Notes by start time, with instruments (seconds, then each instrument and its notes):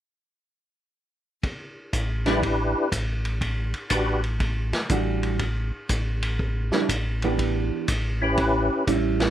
1.43 kick, ride
1.93 tonewheel organ A1, kick, hi-hat pedal, ride
2.26 hollow-body jazz guitar G3 D4 E4, tonewheel organ D4 E4 G4 B4, snare, ride
2.43 kick, ride
2.92 tonewheel organ A1, kick, hi-hat pedal, ride
3.25 ride
3.41 kick, ride
3.74 ride
3.90 tonewheel organ A1 D4 F#4 G4 B4, kick, hi-hat pedal, ride
4.24 ride
4.40 kick, ride
4.73 snare, ride
4.89 tonewheel organ A1, hollow-body jazz guitar E3 G3 D4 F#4, kick, hi-hat pedal, ride
5.23 ride
5.39 kick, ride
5.89 tonewheel organ A1, kick, hi-hat pedal, ride
6.22 ride
6.39 kick
6.72 hollow-body jazz guitar G3 D4 E4, snare
6.89 tonewheel organ A1, kick, hi-hat pedal, ride
7.22 hollow-body jazz guitar E3 B3 D4 G4, ride
7.39 kick, ride
7.88 tonewheel organ A1, kick, hi-hat pedal, ride
8.22 tonewheel organ C#4 E4 G4 B4
8.37 kick, ride
8.87 tonewheel organ A1, hollow-body jazz guitar G3 C#4 E4, kick, hi-hat pedal, ride
9.20 snare, ride